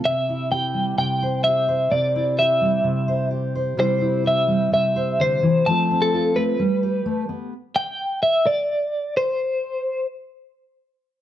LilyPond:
<<
  \new Staff \with { instrumentName = "Clean electric guitar" } { \time 4/4 \key c \major \tempo 4 = 128 e''4 g''4 g''4 e''4 | d''4 e''2 r4 | c''4 e''4 e''4 c''4 | a''8. a'8. b'2 r8 |
r8 g''4 e''8 d''4. c''8~ | c''4. r2 r8 | }
  \new Staff \with { instrumentName = "Steel-string acoustic guitar" } { \time 4/4 \key c \major << { c'8 e'8 g'4. c''8 g'8 c''8 | r8 e'8 g'4. c''8 g'8 c''8 | <g e' g'>8 e'8 g'4. c''4. | <a c' f' a'>8 c'8 f'4 r8 g'4. |
r1 | r1 | } \\ { c4. g8 c2 | c4. g8 c2 | c4. g8 c4 d8 e8 | f4. a8 g4 a8 b8 |
r1 | r1 | } >> }
>>